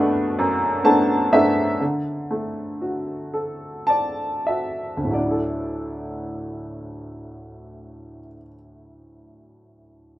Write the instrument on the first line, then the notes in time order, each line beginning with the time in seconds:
upright piano
Already playing: B2 A3 B3 D4 D5 F#5 B5
0.39 F#2
0.84 A3 B3 D4 A5
1.33 A3 B3 D4 E5
1.81 D3
2.31 A3
2.82 F#4
3.34 A4
3.87 D5 A5
4.47 F#4 E5
4.97 D2
5.04 A2
5.11 F#3 D5
5.17 D4
5.24 E4
5.31 A4